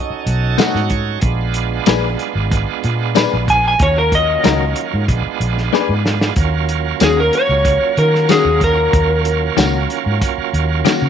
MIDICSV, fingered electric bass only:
0, 0, Header, 1, 3, 480
1, 0, Start_track
1, 0, Key_signature, -6, "minor"
1, 0, Tempo, 641026
1, 926, Time_signature, 4, 2, 24, 8
1, 8306, End_track
2, 0, Start_track
2, 0, Title_t, "Fingered electric bass"
2, 0, Program_c, 0, 33
2, 197, Note_on_c, 0, 35, 84
2, 408, Note_off_c, 0, 35, 0
2, 558, Note_on_c, 0, 44, 74
2, 871, Note_off_c, 0, 44, 0
2, 916, Note_on_c, 0, 34, 90
2, 1335, Note_off_c, 0, 34, 0
2, 1399, Note_on_c, 0, 34, 88
2, 1610, Note_off_c, 0, 34, 0
2, 1761, Note_on_c, 0, 32, 81
2, 1972, Note_off_c, 0, 32, 0
2, 2129, Note_on_c, 0, 46, 85
2, 2440, Note_off_c, 0, 46, 0
2, 2496, Note_on_c, 0, 34, 82
2, 2802, Note_off_c, 0, 34, 0
2, 2845, Note_on_c, 0, 39, 87
2, 3260, Note_off_c, 0, 39, 0
2, 3335, Note_on_c, 0, 37, 88
2, 3539, Note_off_c, 0, 37, 0
2, 3696, Note_on_c, 0, 44, 76
2, 3796, Note_off_c, 0, 44, 0
2, 3807, Note_on_c, 0, 34, 99
2, 3913, Note_off_c, 0, 34, 0
2, 4045, Note_on_c, 0, 34, 85
2, 4254, Note_off_c, 0, 34, 0
2, 4411, Note_on_c, 0, 44, 80
2, 4720, Note_off_c, 0, 44, 0
2, 4767, Note_on_c, 0, 39, 90
2, 5182, Note_off_c, 0, 39, 0
2, 5250, Note_on_c, 0, 39, 95
2, 5456, Note_off_c, 0, 39, 0
2, 5610, Note_on_c, 0, 37, 83
2, 5817, Note_off_c, 0, 37, 0
2, 5971, Note_on_c, 0, 51, 85
2, 6282, Note_off_c, 0, 51, 0
2, 6326, Note_on_c, 0, 39, 74
2, 6637, Note_off_c, 0, 39, 0
2, 6690, Note_on_c, 0, 39, 89
2, 7103, Note_off_c, 0, 39, 0
2, 7170, Note_on_c, 0, 37, 93
2, 7377, Note_off_c, 0, 37, 0
2, 7533, Note_on_c, 0, 44, 76
2, 7634, Note_off_c, 0, 44, 0
2, 7888, Note_on_c, 0, 39, 76
2, 8095, Note_off_c, 0, 39, 0
2, 8251, Note_on_c, 0, 49, 74
2, 8306, Note_off_c, 0, 49, 0
2, 8306, End_track
3, 0, Start_track
3, 0, Title_t, "Muted fingered electric bass strokes"
3, 77, Note_on_c, 9, 29, 32
3, 151, Note_off_c, 9, 29, 0
3, 7771, Note_on_c, 9, 29, 36
3, 7846, Note_off_c, 9, 29, 0
3, 8306, End_track
0, 0, End_of_file